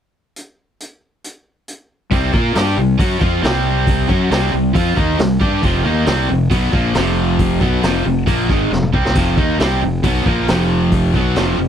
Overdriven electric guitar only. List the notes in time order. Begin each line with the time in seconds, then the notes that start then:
2.11 C3 G3 C4
2.32 A#3 F4 A#4
2.55 G3 D4 G4
2.77 C3 G3
2.98 F#3 C#4 F#4
3.19 F3 C4 F4
3.42 C3 G3 C4
4.08 F#3 C#4 F#4
4.30 C3 G3 C4
4.53 C3 G3
4.73 F3 C4 F4
4.96 D#3 A#3 D#4
5.18 C3 G3
5.40 G3 D4 G4
5.62 F2 C3 F3
5.83 D#3 A#3 D#4
6.06 C3 G3 C4
6.29 F2 C3
6.50 B2 F#3 B3
6.72 A#2 F3 A#3
6.94 F2 C3 F3
7.61 B2 F#3 B3
7.82 F2 C3 F3
8.05 F2 C3
8.26 A#2 F3 A#3
8.49 G#2 D#3 G#3
8.72 F2 C3
8.93 C3 G3 C4
9.15 F2 C3 F3
9.36 D#3 A#3 D#4
9.59 C3 G3 C4
9.82 F2 C3
10.03 B2 F#3 B3
10.26 A#2 F3 A#3
10.49 F2 C3 F3
11.14 B2 F#3 B3
11.36 F2 C3 F3
11.59 F2 C3